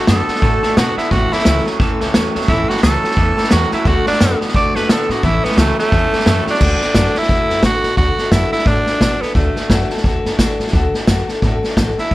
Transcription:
0.07 F#2 D3 A3 B3 D4 F#4 A4, snare, hi-hat pedal
0.27 D3 B3 D4 F#4 A4, muted upright bass stroke, snare
0.35 snare
0.42 A2 D3 A3 D4 F#4 A4, kick, snare
0.63 D3 A3 D4 F#4 A4, muted upright bass stroke, snare
0.76 B2 D3 A3 B3 D4 F#4 A4, snare, hi-hat pedal
0.97 D3 B3 D4 E4 F#4 A4, muted upright bass stroke, snare
1.11 A1 A2 E3 A3 C#4 E4 F#4 A4, kick, snare
1.31 A2 E3 A3 C#4 E4 A4, muted upright bass stroke, snare
1.39 snare
1.45 C#2 A2 E3 F#3 A3 C#4 E4 A4, snare, hi-hat pedal
1.65 A2 F#3 A3 C#4 E4 A4, snare
1.79 A1 A2 E3 A3 C#4 E4 A4, kick, snare
2.01 C#2 A2 E3 A3 C#4 E4 A4, snare
2.14 E2 A2 E3 F#3 A3 C#4 E4 A4, snare, hi-hat pedal
2.35 E2 A2 F#3 A3 C#4 E4 A4, snare
2.41 snare
2.48 A1 A2 E3 A3 C#4 E4 A4, kick, snare
2.69 A2 E3 A3 C#4 E4 F#4 A4, muted upright bass stroke, snare
2.77 snare
2.82 C#2 A2 E3 F#3 A3 C#4 E4 A4, snare, hi-hat pedal
3.02 A2 F#3 A3 C#4 E4 A4, snare
3.11 snare
3.16 E2 A2 E3 A3 C#4 E4 A4, kick, snare
3.37 A2 E3 A3 C#4 E4 A4, muted upright bass stroke, snare
3.44 snare
3.50 E2 A2 E3 F#3 A3 C#4 E4 F#4 A4, snare, hi-hat pedal
3.71 A2 F#3 A3 C#4 E4 A4, muted upright bass stroke, snare
3.85 D2 D3 A3 D4 F#4 A4, kick, snare
4.06 D3 A3 D4 A4, muted upright bass stroke, snare
4.13 snare
4.20 F#2 D3 A3 B3 D4 F#4 A4, snare, hi-hat pedal
4.41 D3 B3 D4 F#4 A4, muted upright bass stroke, snare
4.48 snare
4.54 D2 D3 A3 D4 F#4 A4 D5, kick, snare
4.75 F#2 D3 A3 D4 F#4 A4 B4, snare
4.89 A2 D3 A3 B3 D4 F#4 A4, snare, hi-hat pedal
5.09 A2 D3 B3 D4 F#4 A4, snare
5.22 A1 A2 E3 A3 C#4 E4 A4, kick, snare
5.44 A2 E3 A3 B3 C#4 E4 A4, snare
5.51 snare
5.57 C#2 A2 E3 F#3 A3 C#4 E4 A4, snare, hi-hat pedal
5.79 A2 F#3 A3 C#4 E4 A4, muted upright bass stroke, snare
5.92 E2 A2 A3 C#4 E4 A4, kick, snare
6.13 A2 E3 A3 C#4 E4 A4, muted upright bass stroke, snare
6.20 snare
6.26 F#2 A2 E3 F#3 A3 C#4 E4 A4, snare, hi-hat pedal
6.45 A2 F#3 A3 C#4 E4 A4, muted upright bass stroke, snare
6.50 D4, snare
6.60 D2 D3 A3 D4 F#4 A4, kick, snare, crash
6.81 D4 F#4 A4, snare
6.95 F#2 D3 A3 D4 F#4 A4, kick, snare, hi-hat pedal
7.15 D4 E4 A4, muted upright bass stroke, snare
7.23 snare
7.29 D2 A3 D4 F#4 A4, kick, snare
7.50 F#2 D4 F#4 A4, snare
7.63 A2 D3 A3 D4 F#4 A4, kick, snare, hi-hat pedal
7.83 A2 D4 F#4 A4, snare
7.97 D2 D3 A3 D4 F#4 A4, kick, snare
8.17 F#4 A4, muted upright bass stroke, snare
8.21 D4
8.32 F#2 D3 A3 D4 E4 F#4 A4, kick, snare, hi-hat pedal
8.52 E4 F#4 A4, muted upright bass stroke, snare
8.59 snare
8.66 A2 A3 D4 F#4, kick, snare
8.70 A4
8.87 D4 F#4 A4, muted upright bass stroke, snare
9.00 B2 D3 A3 D4 F#4 A4, kick, snare, hi-hat pedal
9.21 B3 D4 A4, muted upright bass stroke, snare
9.35 D2 D3 A3 D4 F#4 A4, kick, snare
9.56 D4 F#4 A4, muted upright bass stroke, snare
9.70 F#2 D3 A3 D4 F#4 A4, kick, snare, hi-hat pedal
9.90 D4 F#4 A4, snare
9.97 snare
10.04 D2 A3 D4 F#4 A4, kick, snare
10.25 F#2 D4 F#4 A4, snare
10.39 D3 A3 D4 F#4 A4, kick, snare, hi-hat pedal
10.59 A2 D4 F#4 A4, snare
10.67 snare
10.73 D2 D3 A3 D4 F#4 A4, kick, snare
10.94 D4 F#4 A4, muted upright bass stroke, snare
11.07 F#2 D3 A3 D4 F#4 A4, kick, snare, hi-hat pedal
11.28 D4 F#4 A4, muted upright bass stroke, snare
11.42 A2 A3 D4 F#4 A4, kick, snare
11.63 D4 F#4 A4, muted upright bass stroke, snare
11.76 A1 D3 A3 D4 F#4 A4, kick, snare, hi-hat pedal
11.98 D4 E4 F#4 A4, muted upright bass stroke, snare
12.11 G1, kick

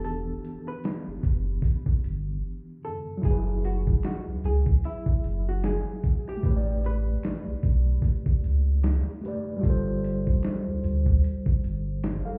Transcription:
Already playing: E1 E3 B3 D4 G4
0.04 A4, closed hi-hat
0.45 closed hi-hat
0.68 B4
0.84 snare, closed hi-hat
1.07 F#1
1.23 F#1, kick, closed hi-hat
1.62 kick, closed hi-hat
1.86 kick
2.04 G1, closed hi-hat
2.85 A4
3.17 F#3
3.22 F#1 E4 G#4, kick, closed hi-hat
3.26 G#4
3.31 B4
3.64 F#4, closed hi-hat
3.87 kick
4.03 F#4, finger snap, snare, closed hi-hat
4.27 C#2
4.44 C#2 G#4, closed hi-hat
4.66 kick
4.84 E4, closed hi-hat
5.06 kick
5.24 F#1, closed hi-hat
5.49 F#4
5.64 G#4, finger snap, snare, closed hi-hat
6.04 kick, closed hi-hat
6.29 G4
6.37 A3
6.42 A1 G4, kick, closed hi-hat
6.46 B4
6.50 C#5
6.57 D5
6.84 B4, closed hi-hat
7.23 finger snap, snare, closed hi-hat
7.47 B1
7.63 B1, kick, closed hi-hat
8.02 kick, closed hi-hat
8.26 kick
8.44 C#2, closed hi-hat
8.84 finger snap, snare, closed hi-hat
9.21 A3 G4, closed hi-hat
9.26 B4 D5
9.57 G3
9.61 G1 F4, kick, closed hi-hat
9.65 A4
9.70 C5
10.04 closed hi-hat
10.27 kick
10.43 finger snap, snare, closed hi-hat
10.67 D2
10.83 D2, closed hi-hat
11.06 kick
11.24 closed hi-hat
11.46 kick
11.64 G1, closed hi-hat
12.04 finger snap, snare, closed hi-hat
12.25 A4 F5

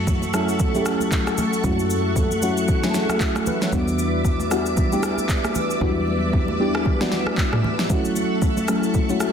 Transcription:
Already playing: F#2 F#3 A3 C#4 E4 F#4 A4 E5 F#5 C#6
0.07 kick, low conga, shaker
0.22 high conga, shaker
0.34 F#3 A3 C#4 E4 A4, cross-stick, shaker
0.49 shaker
0.59 kick, low conga, shaker
0.75 F#3 A3 C#4 E4 G4, high conga, shaker
0.82 A4, cross-stick, shaker
1.00 high conga, shaker
1.12 kick, clap, shaker
1.27 cross-stick, high conga, shaker
1.38 high conga, low conga, shaker
1.53 shaker
1.64 F#2 F#3 G#3 C#4 E4 F#4, kick, low conga, shaker
1.70 A3
1.79 shaker
1.90 high conga, shaker
2.16 kick, low conga, shaker
2.31 high conga, shaker
2.42 F#3 A3 C#4 E4 F#4, shaker
2.57 shaker
2.68 kick, low conga, shaker
2.83 F#3 A3 C#4 E4 G#4, snare, high conga, shaker
2.91 A4, snare, shaker
3.09 F#4, cross-stick, high conga, shaker
3.20 F#4 A4, kick, clap, shaker
3.36 cross-stick, high conga, shaker
3.46 B4, high conga, low conga, shaker
3.62 A4 C#5, snare, shaker
3.72 E2 G3 B3 D4 E4 F#4 B4 D5 D6, kick, low conga, shaker
3.88 shaker
3.99 high conga, shaker
4.25 kick, low conga, shaker
4.40 high conga, shaker
4.51 G3 B3 D4 E4 F#4, cross-stick, shaker
4.66 shaker
4.77 kick, low conga, shaker
4.92 G3 B3 D4 E4 G4, high conga, shaker
5.03 cross-stick, shaker
5.18 high conga, shaker
5.29 kick, clap, shaker
5.44 cross-stick, high conga, shaker
5.55 high conga, low conga, shaker
5.71 shaker
5.81 E2 F#3 B3 D4 E4 F#4, kick, low conga
5.87 G3
6.08 high conga
6.33 kick, low conga
6.48 high conga
6.60 G3 B3 D4 E4 G4
6.75 cross-stick
6.85 kick, low conga
7.01 G3 B3 D4 E4 F#4, snare, high conga
7.12 snare
7.26 cross-stick, high conga
7.38 kick, clap
7.53 cross-stick, mid tom, high conga
7.64 high conga, low conga
7.79 snare
7.90 F#3 A3 C#4 E4 F#4 A4 F#5 C#6, kick, low conga, shaker
8.05 shaker
8.16 high conga, shaker
8.42 kick, low conga, shaker
8.57 high conga, shaker
8.68 F#3 A3 C#4 E4 A4, cross-stick, shaker
8.83 shaker
8.94 kick, low conga, shaker
9.09 F#3 G#3 C#4 E4 F#4, high conga, shaker
9.16 A3
9.20 cross-stick, shaker

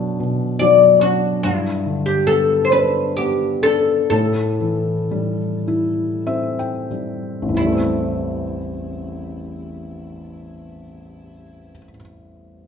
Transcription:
Already playing: B2 F#3 D4 B4
0.20 B2
0.59 F#3 D5
1.01 D4 F#4
1.43 G2 E4
1.86 D3
2.06 G4
2.27 B3 A4
2.65 C5
2.72 D4 B4
3.17 B3 G4
3.63 D4 A4
4.10 A2 A4
4.60 E3
5.11 G3
5.68 E4
6.27 C4 E5
6.59 G5
6.91 G3
7.42 A1
7.49 E2
7.54 E3 E4
7.60 G3
7.66 A3
7.72 C4

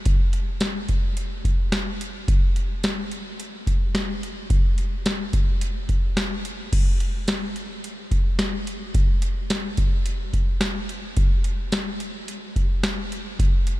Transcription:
0.05 kick, closed hi-hat
0.33 closed hi-hat
0.61 snare, closed hi-hat
0.89 kick, closed hi-hat
1.17 closed hi-hat
1.45 kick, closed hi-hat
1.72 snare, closed hi-hat
2.01 closed hi-hat
2.28 kick, closed hi-hat
2.56 closed hi-hat
2.84 snare, closed hi-hat
3.11 closed hi-hat
3.40 closed hi-hat
3.67 kick, closed hi-hat
3.95 snare, closed hi-hat
4.23 closed hi-hat
4.50 kick, closed hi-hat
4.78 closed hi-hat
5.06 snare, closed hi-hat
5.33 kick, closed hi-hat
5.61 closed hi-hat
5.89 kick, closed hi-hat
6.17 snare, closed hi-hat
6.45 closed hi-hat
6.73 kick, closed hi-hat, crash
7.00 closed hi-hat
7.28 snare, closed hi-hat, tambourine
7.56 closed hi-hat
7.84 closed hi-hat
8.11 kick, closed hi-hat
8.39 snare, closed hi-hat, tambourine
8.67 closed hi-hat
8.94 kick, closed hi-hat
9.22 closed hi-hat
9.50 snare, closed hi-hat, tambourine
9.77 kick, closed hi-hat
10.06 closed hi-hat
10.33 kick, closed hi-hat
10.61 snare, closed hi-hat, tambourine
10.89 closed hi-hat
11.17 kick, closed hi-hat
11.44 closed hi-hat
11.72 snare, closed hi-hat, tambourine
12.00 closed hi-hat
12.28 closed hi-hat
12.56 kick, closed hi-hat
12.83 snare, closed hi-hat, tambourine
13.12 closed hi-hat
13.39 kick, closed hi-hat
13.67 closed hi-hat

